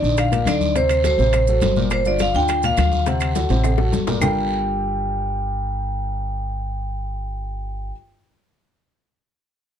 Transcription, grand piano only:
0.02 D3 D4 D#4
0.32 A#2 A#3 A#4
0.46 D3 D4 D#4
0.76 C3 C4 C5
1.04 F#3 F#4 A4
1.19 C3 C4 C5
1.49 F#3 F#4 A4
1.77 A#2 A#3 A#4
2.06 D3 D4 F4
2.35 D3 D4 F4
2.63 A#2 A#3 A#4
2.78 D3 D4 F4
3.07 C3 C4 C5
3.36 F#3 F#4 A4
3.50 C3 C4 C5
3.79 F#3 F#4 A4
4.08 A#2 A#3 A#4
4.22 G3 D4 F4 G4 A4 A#4

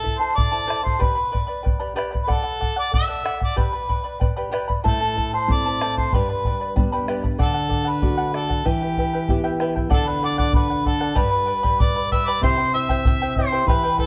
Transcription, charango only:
0.03 E4 A4 E5 A5
0.20 E4 A4 A5
0.36 E4 A4 E5 A5
0.52 E4 A4 C5 E5 A5
0.67 E4 A4 C5 E5 A5
0.83 E4 A4 A5
0.99 G4 B4 D5 G5 B5
1.15 B4 D5 B5
1.32 B4 D5 G5 B5
1.47 B4 D5 B5
1.63 B4 D5 G5 B5
1.80 G4 B4 D5 G5 B5
1.95 G4 B4 D5 G5 B5
2.11 B4 D5 B5
2.27 A4 D5 F#5
2.43 D5 F#5
2.59 A4 D5 F#5
2.76 D5 F#5
2.91 A4 D5 F#5
3.08 A4 D5 F#5
3.24 A4 D5 F#5
3.40 F#5
3.56 G4 B4 D5 G5 B5
3.73 B4 D5 B5
3.89 B4 D5 G5 B5
4.04 B4 D5 B5
4.20 B4 D5 G5 B5
4.37 G4 B4 D5 G5 B5
4.51 G4 B4 D5 G5 B5
4.68 B4 D5 B5
4.84 E4 A4 C5 E5 A5
5.01 E4 A4 A5
5.16 E4 A4 E5 A5
5.34 E4 A4 A5
5.49 E4 A4 E5 A5
5.66 E4 A4 C5 E5 A5
5.81 E4 A4 C5 E5 A5
5.98 E4 A4 A5
6.14 G4 B4 D5 G5 B5
6.29 B4 D5 B5
6.45 B4 D5 G5 B5
6.60 B4 D5 B5
6.76 B4 D5 G5 B5
6.92 G4 B4 D5 G5 B5
7.08 G4 B4 D5 G5 B5
7.24 B4 D5 B5
7.38 A4 D5 F#5
7.54 D5 F#5
7.68 A4 D5 F#5
7.85 D5 F#5
8.02 A4 D5 F#5
8.17 A4 D5 F#5
8.34 A4 D5 F#5
8.50 D5 F#5
8.65 E4 G4 B4 E5 G5
8.82 E4 B4 G5
8.97 E4 B4 E5 G5
9.13 E4 B4 G5
9.28 E4 B4 E5 G5
9.44 E4 G4 B4 E5 G5
9.60 E4 G4 B4 E5 G5
9.76 E4 B4 G5
9.89 A4 D5 F#5
10.07 D5 F#5
10.22 A4 D5 F#5
10.38 A4 D5 F#5
10.54 A4 D5 F#5
10.70 D5 F#5
10.86 A4 D5 F#5
11.00 A4 D5 F#5
11.15 G4 B4 D5 G5 B5
11.31 B4 D5 B5
11.46 B4 D5 G5 B5
11.63 G4 B4 D5 G5 B5
11.80 B4 D5 G5 B5
11.96 B4 D5 B5
12.12 B4 D5 G5 B5
12.28 G4 B4 D5 G5 B5
12.43 E4 G4 C5 E5 G5
12.57 E4 C5 G5
12.74 E4 C5 E5 G5
12.89 E4 G4 C5 E5 G5
13.06 E4 C5 E5 G5
13.22 E4 C5 G5
13.38 E4 C5 E5 G5
13.52 E4 G4 C5 E5 G5
13.69 E4 G4 B4 E5 G5
13.83 E4 B4 G5
13.98 E4 B4 E5 G5

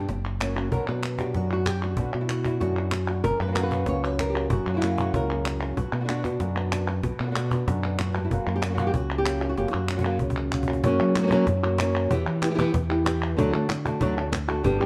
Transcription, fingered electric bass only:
0.09 F#1
0.72 B1
0.88 B2
1.35 F#2
1.98 B1
2.14 B2
2.62 F#2
3.25 F#1
3.40 F#2
3.88 C#2
4.51 F#1
4.67 F#2
5.14 C#2
5.77 B1
5.92 B2
6.41 F#2
7.03 B1
7.20 B2
7.67 F#2
8.31 F#1
8.47 F#2
8.94 C#2
9.58 F#1
9.74 F#2
10.22 C#2
10.84 F#2
11.00 F#3
11.48 F#2
12.11 E2
12.26 E3
12.75 E2
13.39 D2
13.55 D3
14.02 D2
14.66 G1
14.82 G2

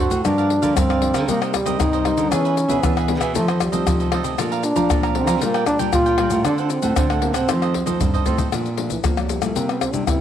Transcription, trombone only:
Already playing: F#4
0.25 D4
0.77 C4
1.28 A#3
1.53 G3
1.79 D#4
2.31 C#4
2.83 B3
3.35 A3
3.60 G3
4.64 D4
5.15 C4
5.43 A#3
5.67 D4
5.94 F4
6.46 D4
6.64 D4
6.71 C4
7.11 A3
7.22 A#3
7.36 C4
8.90 E3
9.04 F3
9.18 F#3
9.29 G3
9.42 A3
9.56 A#3
9.69 B3
9.81 C4
9.93 D4
10.07 E4

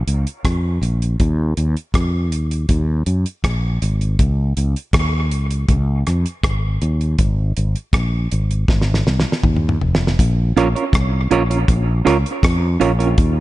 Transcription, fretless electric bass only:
0.07 C#2
0.45 F2
0.82 A#1
1.20 D#2
1.57 D#2
1.94 F2
2.32 D#2
2.69 D#2
3.07 F#2
3.44 A#1
3.82 G#1
4.19 C#2
4.57 C#2
4.93 D#2
5.33 C#2
5.69 C#2
6.07 F2
6.44 G#1
6.82 D#2
7.19 G#1
7.57 G#1
7.93 A#1
8.32 G#1
8.69 G#1
9.06 C2
9.44 D#2
9.82 F1
10.19 A#1
10.57 A#1
10.94 C2
11.32 A#1
11.69 A#1
12.07 C#2
12.44 F2
12.81 A#1
13.18 D#2

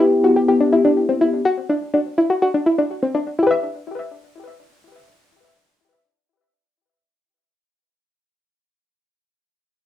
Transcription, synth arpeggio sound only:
0.00 E4
0.24 F#4
0.36 G4
0.48 G4
0.61 D4
0.73 E4
0.85 D4
1.09 C4
1.21 E4
1.45 F#4
1.69 D4
1.94 D4
2.18 E4
2.30 F#4
2.42 F#4
2.54 D4
2.66 E4
2.78 D4
3.02 C4
3.15 D4
3.39 E4 G4
3.47 B4 E5

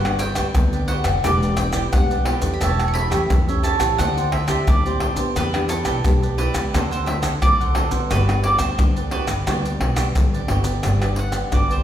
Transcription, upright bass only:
Already playing: G1
0.36 D2
0.55 D2
1.05 F1
1.25 E1
1.93 E1
2.42 E2
2.62 E1
3.11 E2
3.31 E2
3.79 A1
3.99 D2
4.67 D2
5.17 D2
5.36 E2
5.86 B1
6.05 B1
6.54 C#2
6.74 D2
7.42 D2
7.91 D3
8.11 G1
8.60 D2
8.79 D2
9.28 G1
9.47 D2
9.80 B1
10.16 A1
10.48 G1
10.84 G1
11.53 G1

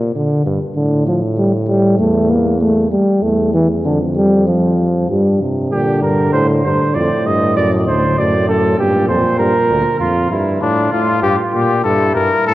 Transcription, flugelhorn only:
5.72 G4
6.02 A#4
6.33 C5
6.64 C5
6.95 D5
7.26 D#5
7.57 D5
7.87 C5
8.18 D5
8.49 A4
8.79 G4
9.09 C5
9.39 A#4
10.00 F4
10.30 E4
10.61 F4
11.84 E4

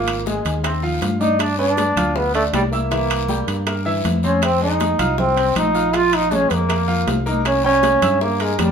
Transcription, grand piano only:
Already playing: F3 F4 F5
0.26 G#3 G#4 G#5
0.64 C4 C5 C6
0.83 F3 F4 F5
1.21 D4 D5 D6
1.59 B3 B4 B5
1.97 F4 F5 F6
2.35 D4 D5 D6
2.73 E4 E5 E6
2.91 E3 E4 E5
3.28 G3 G4 G5
3.67 A#3 A#4 A#5
3.85 E3 E4 E5
4.24 C4 C5 C6
4.61 G#3 G#4 G#5
4.99 F4 F5 F6
5.36 C4 C5 C6
5.75 F4 F5 F6
5.93 F3 F4 F5
6.31 G#3 G#4 G#5
6.69 A#3 A#4 A#5
6.88 F3 F4 F5
7.26 A#3 A#4 A#5
7.64 G3 G4 G5
8.02 E4 E5 E6
8.40 A#3 A#4 A#5

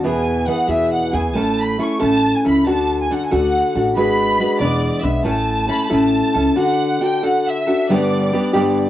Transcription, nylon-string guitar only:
0.04 E2 B2 E3 B3 E4 G#4
0.48 E3 B3 E4 G#4
0.69 E2 B2 E3 B3 E4 G#4
1.13 E3 B3 E4 G#4
1.34 A2 A3 C#4 E4 A4
1.78 A3 C#4 E4 A4
2.00 A2 A3 C#4 E4 A4
2.45 C#4 E4 A4
2.66 D3 D4 F#4 A4
3.10 D3 D4 F#4 A4
3.31 D3 D4 F#4 A4
3.75 D4 F#4 A4
3.97 G#3 D4 F#4 B4
4.40 G#3 D4 F#4 B4
4.61 E2 E3 G#3 B3 D4 B4
5.03 G#3 B3 D4 B4
5.24 A2 A3 C#4 E4 A4
5.68 A3 C#4 E4 A4
5.90 A2 A3 C#4 E4 A4
6.34 C#4 E4 A4
6.56 D3 D4 F#4 A4
7.00 D3 D4 F#4 A4
7.23 D3 D4 F#4 A4
7.67 D4 F#4 A4
7.89 G2 D3 G3 B3 D4 G4
8.33 G3 B3 D4 G4
8.53 G2 D3 G3 B3 D4 G4

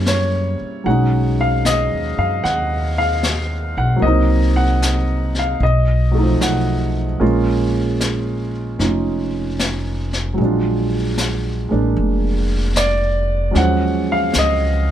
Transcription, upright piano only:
Already playing: G3 A#3 C#4 E4
0.08 C#5
0.84 F#3 G#3 C#4 F#5
0.89 D#4
1.41 F5
1.66 D#5
2.19 F5
2.44 F#5
2.98 F5
3.78 F#5
3.96 F#3 A#3
4.02 C4 D#5
4.07 D#4
4.56 F#5
5.39 F5
5.63 D#5
6.11 F#3 A3
6.18 F3 D#4
6.42 F#5
7.20 G#3 A#3 C#4 F4
8.79 C#4 D#4 F4
10.34 F#3 G#3
10.42 D4 F4
11.69 G#3 A#3 D4
12.77 D5
13.51 F#3 G#3 C#4
13.57 F3 F#5
14.12 F5
14.38 D#5

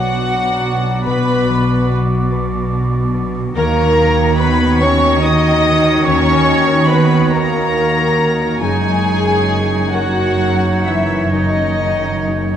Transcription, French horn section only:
Already playing: F#3
1.06 B3
3.55 A#3
4.41 B3
4.80 C#4
5.20 D#4
6.03 C#4
6.89 B3
7.31 A#3
8.61 G#3
9.92 F#3
10.85 E3
11.33 D#3

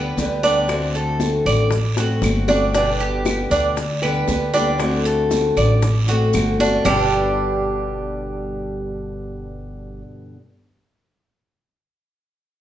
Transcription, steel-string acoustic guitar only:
Already playing: D3 G3 B3 G4
0.17 D3 G3 B3 G4
0.43 D3 G3 B3 G4
0.68 D3 A3 C4 F#4
1.72 muted steel-string acoustic guitar stroke
1.97 A3 C4 F#4
2.23 D3 A3 C4 F#4
2.49 A3 C4 F#4
2.74 B2 D3 G3 B3 G4
3.77 muted steel-string acoustic guitar stroke
4.02 D3 G3 B3 G4
4.28 D3 G3 B3 G4
4.54 D3 G3 B3 G4
4.78 D3 A3 C4 F#4
5.83 muted steel-string acoustic guitar stroke
6.08 A3 C4 F#4
6.34 D3 A3 C4 F#4
6.60 A3 C4 F#4
6.84 G2 B2 D3 G3 B3 G4

